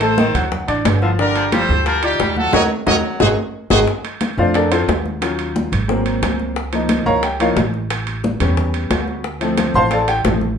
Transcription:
Already playing: upright bass A1
0.01 upright piano A3 A4 A5, trumpet section A4 C5, high conga, high timbale
0.17 baritone saxophone D#3, upright piano D#3 D#4 D#5, high bongo, high conga
0.34 upright bass D2, upright piano F#3 F#4 F#5, high bongo, high conga, low conga, high timbale
0.52 high bongo, high conga, low conga
0.68 upright bass A1, upright piano D4 D5 D6, high conga, high timbale
0.85 upright bass G1, high bongo, low bongo, high conga, high timbale, low timbale
1.02 baritone saxophone D3, upright piano F3 F4 F5, high bongo, high conga
1.19 upright piano D3 D4 D5, trumpet section G4 A#4, high bongo, high conga
1.36 baritone saxophone F3, high conga, high timbale
1.52 upright piano F3 F4 F5, baritone saxophone G3, trumpet section A4 C5, high bongo, high conga, high timbale
1.69 upright bass D2, upright piano G3 G4 G5, high bongo, high conga
1.86 baritone saxophone F3, trumpet section G4 A#4, high bongo, high conga, high timbale
2.03 trumpet section D#4 G4, upright piano F4 D5 D6, high bongo, high conga, high timbale
2.20 upright bass D#2, baritone saxophone G3, high bongo, low bongo, high conga, high timbale
2.36 upright piano F#3 F#4 F#5, trumpet section F4 A4, high bongo, high conga
2.53 upright bass D#2, baritone saxophone F#3, upright piano D#4 F#4 A#4, trumpet section A#4 C#5 D#5, low bongo, high conga, high timbale
2.87 upright bass D#2, baritone saxophone F#3, upright piano D#4 F#4 A#4, trumpet section A#4 C#5 D#5, low bongo, high conga, high timbale
3.20 upright bass G#1, upright piano D#4 F#4 G#4, trumpet section F#4 G#4 C5, low bongo, high conga, high timbale
3.70 upright bass G#1, baritone saxophone D#3, upright piano D#4 F#4 G#4, trumpet section F#4 G#4 C5, low bongo, high conga, high timbale
3.88 high bongo
4.04 high conga, high timbale
4.21 high bongo, high conga, high timbale
4.38 upright bass F2, upright piano A3 C4 D4 F4 C5 D5 F5, high bongo, high conga
4.54 upright piano D4 A4 A#4 D5, high bongo, high conga, high timbale
4.72 upright piano C4 F4 A4 C5, high bongo, high conga, high timbale
4.88 upright bass D#2, high bongo, low bongo, high conga, high timbale, low timbale
5.06 high bongo, high conga
5.21 upright piano F#3 C#4 F4, high bongo, high conga, high timbale
5.39 high conga, high timbale
5.56 high bongo, high conga
5.72 upright bass G#1, high bongo, high conga, low conga, high timbale
5.88 upright piano F#3 A#3 C4, high bongo, high conga
6.06 high conga, high timbale
6.22 upright bass C#2, high bongo, low bongo, high conga, high timbale
6.39 high bongo, high conga
6.56 high bongo, high conga
6.73 upright piano F3 A#3 D#4, high conga, high timbale
6.89 high bongo, high conga, high timbale
7.06 upright bass C#2, upright piano A#4 C#5 F5 A#5, high bongo, high conga
7.23 upright piano G4 G5, high bongo, high conga, high timbale
7.40 upright piano F3 A#3 D#4 F4 A#4 C#5 F5, high bongo, high conga, high timbale
7.56 upright bass A1, high bongo, low bongo, high conga, high timbale
7.74 high bongo
7.90 high bongo, high conga, high timbale
8.07 high conga, high timbale
8.24 high bongo, high conga
8.40 upright bass E2, upright piano G3 B3 C#4, high bongo, high conga, low conga, high timbale
8.57 high bongo, high conga, low conga
8.74 high conga, high timbale
8.90 upright bass D2, high bongo, low bongo, high conga, high timbale, low timbale
9.08 high bongo, high conga
9.24 high bongo, high conga
9.41 upright piano F3 A3 C4, high conga, high timbale
9.58 high bongo, high conga, high timbale
9.74 upright bass A1, upright piano C5 F5 A5 C6, high bongo, high conga
9.91 upright piano A4 D5 F5 A5, high bongo, high conga, high timbale
10.08 upright piano G4 G5, high bongo, high conga, high timbale
10.25 upright bass A1, upright piano F3 A3 C4, high bongo, low bongo, high conga, high timbale, low timbale
10.41 high bongo, high conga

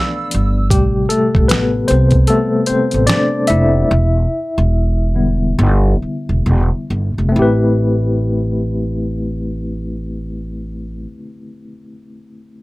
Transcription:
Already playing: tine electric piano E3 F3 A3 D4 D5, woodwind section A4 F5 B5 E6
0.31 upright bass G1, closed hi-hat
0.70 upright bass A1, tine electric piano C3 G3 G4, kick, closed hi-hat
1.09 tine electric piano A3 A4, closed hi-hat
1.35 upright bass A1, kick
1.48 tine electric piano B3 B4, finger snap, snare, closed hi-hat
1.88 upright bass C2, tine electric piano C4 C5, closed hi-hat
2.11 kick, closed hi-hat
2.27 tine electric piano C3 G3 A3 B3 A4, closed hi-hat
2.66 tine electric piano C4 C5, muted upright bass stroke, closed hi-hat
2.91 upright bass A1, closed hi-hat
3.07 tine electric piano D4 D5, finger snap, snare, closed hi-hat
3.47 upright bass F1, tine electric piano E4 E5, closed hi-hat
3.91 upright bass E1
4.58 upright bass E1
5.15 tine electric piano D3 G3 B3
5.59 upright bass G1
6.02 muted upright bass stroke
6.29 upright bass E1
6.46 upright bass E1
6.90 upright bass G1
7.18 upright bass F1
7.29 tine electric piano A3 C4
7.36 upright bass A1, tine electric piano E4 G4
7.42 tine electric piano B4

